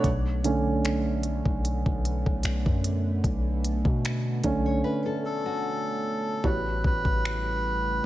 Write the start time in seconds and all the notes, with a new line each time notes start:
0.04 B1 D3 A3 B3, kick, closed hi-hat
0.44 D3 A3 C#4, closed hi-hat
0.85 finger snap, closed hi-hat
1.23 closed hi-hat
1.46 B1, kick
1.65 closed hi-hat
1.86 B1, kick
2.05 closed hi-hat
2.26 B1, kick
2.43 B1, finger snap, closed hi-hat
2.66 F#2, kick
2.84 closed hi-hat
3.24 B1, kick, closed hi-hat
3.64 closed hi-hat
3.85 B2, kick
4.05 finger snap, closed hi-hat
4.44 B1 D3 A3 C#4, kick, closed hi-hat
4.66 C#5
4.84 B4
5.06 A4
5.25 A4
5.46 F#4
6.44 A1 A2 C#3 G3 A3 B3 F#4 B4 C#5, kick
6.84 A1 B4, kick
7.05 kick
7.25 finger snap